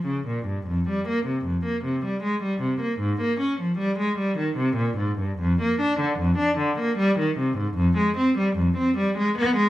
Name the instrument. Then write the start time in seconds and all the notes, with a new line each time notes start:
cello
0.06 C#3
0.28 A#2
0.46 G2
0.67 F2
0.89 G3
1.08 A#3
1.26 C3
1.45 F2
1.65 A#3
1.84 C3
2.05 G3
2.23 G#3
2.43 G3
2.61 C3
2.81 A#3
3.00 G#2
3.22 A#3
3.40 C#4
3.61 F3
3.78 G3
3.99 G#3
4.19 G3
4.38 D#3
4.57 C3
4.77 A#2
4.98 G#2
5.19 G2
5.39 F2
5.62 A#3
5.81 D4
6.00 D3
6.19 F2
6.38 D4
6.58 D3
6.79 A#3
6.98 G3
7.19 D#3
7.38 C3
7.58 G#2
7.75 F2
7.98 G#3
8.17 C4
8.38 G3
8.56 F2
8.77 C4
8.98 G3
9.18 G#3
9.38 B3
9.57 G#3